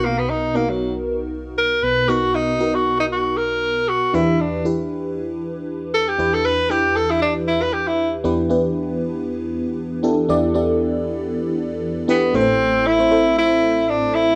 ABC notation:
X:1
M:4/4
L:1/16
Q:"Swing 16ths" 1/4=117
K:Ephr
V:1 name="FM electric piano"
[B,^D^F^A]3 z [B,DFA]4- [B,DFA] z6 z | [B,^D^F^A]3 z [B,DFA]4- [B,DFA] z6 z | [DEGB]3 z [DEGB]4- [DEGB] z6 z | [DEGB]3 z [DEGB]4- [DEGB] z6 z |
[B,DEGB] z [B,DEGB]4- [B,DEGB] z6 z [B,DEGA] z | [B,DEGd] z [B,DEGd]4- [B,DEGd] z6 z [B,DEGB] z | [A,CEABc]3 z2 [A,CEAc] [A,CEAc]4- [A,CEAc] z4 z |]
V:2 name="FM electric piano" clef=bass
[B,,,B,,]12- [B,,,B,,]2 [B,,,B,,]2- | [B,,,B,,]12- [B,,,B,,]2 z2 | [E,,E,]16 | [E,,E,]16 |
[E,,E,]16 | [E,,E,]16 | [A,,,A,,]16 |]
V:3 name="Tenor saxophone"
^A, B, ^D2 A, ^F,2 z4 z ^A2 B2 | ^F2 ^D3 F2 D F2 ^A4 F2 | E2 D2 z8 z2 A G- | G A B2 G2 A E D2 E B G E2 z |
z16 | z12 z2 B,2 | C4 E4 E4 D2 E2 |]